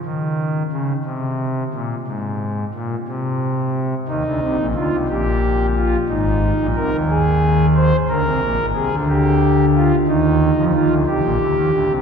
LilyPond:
<<
  \new Staff \with { instrumentName = "Pipe organ" } { \time 12/8 \key ees \mixolydian \tempo 4. = 60 ees4 des8 c4 bes,8 aes,4 bes,8 c4. | ees'4 f'8 g'4 f'8 ees'4 bes'8 aes'4 c''8 | bes'4 aes'8 g'4 f'8 ees'4 f'8 g'4. | }
  \new Staff \with { instrumentName = "Pipe organ" } { \clef bass \time 12/8 \key ees \mixolydian r1. | <ees, ees>16 <d, d>16 <c, c>16 <bes,, bes,>16 <d, d>16 <c, c>16 <bes,, bes,>4. <aes,, aes,>8. <bes,, bes,>16 <c, c>16 <ees, ees>4.~ <ees, ees>16 | <d, d>16 <c, c>16 <bes,, bes,>16 <aes,, aes,>16 <c, c>16 <d, d>4.~ <d, d>16 <ees, ees>8. <f, f>16 <ees, ees>16 <d, d>16 <c, c>16 <bes,, bes,>16 <d, d>16 <ees, ees>16 <d, d>16 <c, c>16 | }
>>